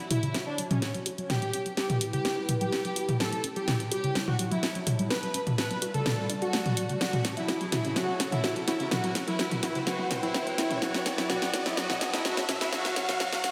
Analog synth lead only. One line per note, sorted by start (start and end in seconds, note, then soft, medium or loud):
0.11 0.32 E4 medium
0.47 0.60 D4 medium
0.71 0.84 C#4 medium
1.30 1.58 G4 medium
1.77 1.98 G4 medium
2.13 2.41 G4 medium
2.61 3.11 G4 loud
3.20 3.41 A4 loud
3.56 3.77 G4 loud
3.92 4.13 G4 medium
4.28 4.41 F#4 medium
4.51 4.65 E4 medium
5.11 5.39 B4 medium
5.58 5.79 B4 loud
5.94 6.22 A4 medium
6.42 6.92 F#4 loud
7.01 7.22 F#4 medium
7.37 7.58 E4 medium
7.72 7.94 E4 medium
7.96 8.17 F#4 loud
8.32 8.53 E4 medium
8.68 8.89 E4 medium
8.91 9.13 F#4 medium
9.28 9.49 E4 medium
9.63 9.84 E4 medium
9.87 10.08 F#4 loud
10.23 10.44 E4 loud
10.58 10.79 E4 loud
10.82 11.03 F#4 loud
11.18 11.28 E4 medium
11.30 11.51 F#4 loud
11.66 11.75 E4 medium
11.77 11.98 F#4 loud
12.13 12.23 E4 loud
12.25 12.46 F#4 loud
12.61 12.71 E4 loud
12.72 12.94 F#4 loud
12.96 13.17 F#4 loud
13.20 13.41 F#4 loud
13.44 13.52 F#4 loud